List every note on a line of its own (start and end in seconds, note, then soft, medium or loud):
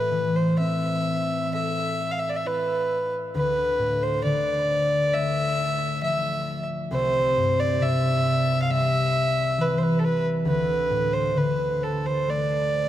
0.00 3.41 A2 soft
0.00 0.38 B4 medium
0.11 3.41 E3 soft
0.36 0.59 C5 medium
0.59 3.59 C4 soft
0.59 1.50 E5 medium
1.54 3.74 A4 soft
1.54 2.13 E5 medium
2.11 2.21 F5 medium
2.19 2.31 E5 medium
2.29 2.38 D5 medium
2.37 2.48 E5 medium
2.45 5.06 E4 soft
2.45 3.14 B4 medium
3.35 6.97 D2 soft
3.35 4.04 B4 medium
3.79 4.30 A2 soft
4.03 4.23 C5 medium
4.24 6.97 D3 soft
4.24 5.15 D5 medium
5.14 8.46 A3 soft
5.14 6.02 E5 medium
6.02 6.97 F3 soft
6.02 6.65 E5 medium
6.91 10.52 C2 medium
6.91 7.61 C5 medium
7.37 7.86 G2 soft
7.60 7.84 D5 medium
7.80 10.52 C3 soft
7.80 8.62 E5 medium
8.62 8.72 F5 medium
8.70 10.52 G3 medium
8.70 9.63 E5 medium
9.58 10.52 E3 soft
9.58 9.80 B4 medium
9.78 9.84 C5 soft
9.82 10.01 B4 medium
9.99 10.06 A4 soft
10.04 10.25 B4 medium
10.45 12.89 D2 medium
10.45 11.15 B4 medium
10.90 11.41 A2 soft
11.13 11.39 C5 medium
11.35 12.89 D3 soft
11.35 11.85 B4 medium
11.84 12.08 A4 medium
12.06 12.31 C5 medium
12.28 12.89 A3 soft
12.28 12.89 D5 medium